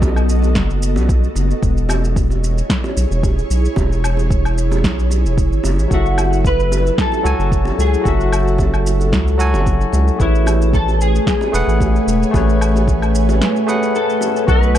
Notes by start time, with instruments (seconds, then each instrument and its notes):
Already playing: analog synth bass B1, ambient pad B3 F#4 A4 D#5
0.02 kick, high bongo, shaker
0.16 low woodblock, shaker
0.29 shaker
0.42 high bongo, shaker
0.55 analog synth bass F#1, kick, snare, shaker
0.70 shaker
0.82 shaker
0.96 analog synth bass B1, high bongo, shaker
1.09 kick, shaker
1.24 shaker
1.35 analog synth bass F#1, high bongo, shaker
1.51 shaker
1.62 analog synth bass E1, ambient pad E4 G#4 C#5, kick, shaker
1.77 shaker
1.89 high bongo, low woodblock, shaker
2.04 shaker
2.16 kick, shaker
2.30 high bongo, shaker
2.44 shaker
2.58 shaker
2.70 kick, snare, shaker
2.84 high bongo, shaker
2.97 analog synth bass B1, shaker
3.11 analog synth bass E1, shaker
3.23 kick, high bongo, shaker
3.39 shaker
3.50 analog synth bass B1, shaker
3.65 shaker
3.76 analog synth bass E1, kick, high bongo, shaker
3.92 shaker
4.04 low woodblock, shaker
4.17 high bongo, shaker
4.30 kick, shaker
4.45 low woodblock, shaker
4.58 shaker
4.72 high bongo, shaker
4.84 analog synth bass B1, kick, snare, shaker
4.99 shaker
5.11 high bongo, shaker
5.25 analog synth bass E1, shaker
5.38 kick, shaker
5.52 analog synth bass G#1, shaker
5.64 analog synth bass F#1, ambient pad F#4 A4, high bongo, shaker
5.79 analog synth bass A1, shaker
5.88 analog synth bass F#1, tine electric piano F#3 F#4, kick, shaker
5.92 clean electric guitar F#4, tine electric piano A4 E5
6.06 shaker
6.18 high bongo, low woodblock, shaker
6.33 shaker
6.44 clean electric guitar B4, kick, shaker
6.60 shaker
6.72 high bongo, shaker
6.87 shaker
6.98 clean electric guitar A4, kick, snare, shaker
7.12 high bongo, shaker
7.23 analog synth bass C#2, tine electric piano F#3 F#4 A4 G#5, shaker
7.39 analog synth bass F#1, shaker
7.52 kick, shaker
7.65 high bongo, shaker
7.78 analog synth bass C#2, clean electric guitar G#4, shaker
7.94 shaker
8.02 analog synth bass F#1, tine electric piano F#3 F#4, kick, high bongo
8.06 clean electric guitar F#4, tine electric piano A4 E5, shaker
8.20 shaker
8.33 low woodblock, shaker
8.48 shaker
8.58 kick, high bongo, shaker
8.74 low woodblock, shaker
8.87 shaker
9.00 high bongo, shaker
9.12 analog synth bass C#2, kick, snare, shaker
9.28 shaker
9.38 tine electric piano F#3 F#4 A4 G#5, shaker
9.54 analog synth bass F#1, high bongo, shaker
9.66 kick, shaker
9.81 shaker
9.92 analog synth bass C#2, high bongo, shaker
10.08 shaker
10.16 analog synth bass A1, tine electric piano A3 G#4, kick, shaker
10.20 ambient pad A3 B4 C#5 G#5, clean electric guitar E4, tine electric piano B4 C#5
10.35 shaker
10.46 high bongo, low woodblock, shaker
10.62 shaker
10.73 clean electric guitar A4, kick, shaker
10.88 high bongo, shaker
11.01 clean electric guitar G#4, shaker
11.15 shaker
11.27 kick, snare, shaker
11.41 high bongo, shaker
11.52 analog synth bass E1, tine electric piano A3 G#4 B4 F#5, shaker
11.68 analog synth bass A1, shaker
11.80 kick, high bongo, shaker
11.96 shaker
12.07 analog synth bass E1, shaker
12.23 shaker
12.31 analog synth bass A1, tine electric piano A3 G#4, kick, high bongo
12.35 tine electric piano B4 C#5, shaker
12.49 shaker
12.61 low woodblock, shaker
12.76 high bongo, shaker
12.87 kick, shaker
13.02 low woodblock, shaker
13.15 shaker
13.29 high bongo, shaker
13.41 snare, shaker
13.56 shaker
13.67 tine electric piano A3 G#4 B4 F#5, high bongo, shaker
13.83 shaker
13.95 clean electric guitar A4, shaker
14.10 shaker
14.21 high bongo, shaker
14.36 shaker
14.45 analog synth bass B1, tine electric piano B3 F#4, ambient pad B3 F#4, harp F#4, kick, shaker
14.49 ambient pad A4 D#5, tine electric piano A4 D#5, clean electric guitar B4
14.63 shaker
14.75 low woodblock